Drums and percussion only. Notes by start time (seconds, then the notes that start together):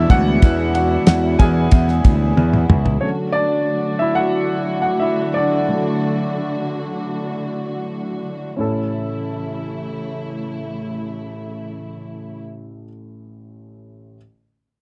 0.10 kick, ride
0.42 kick, ride
0.75 ride
1.06 snare, ride
1.39 kick, ride
1.71 kick, ride
1.88 snare
2.04 kick, ride
2.37 high tom
2.53 mid tom
2.70 mid tom
2.86 floor tom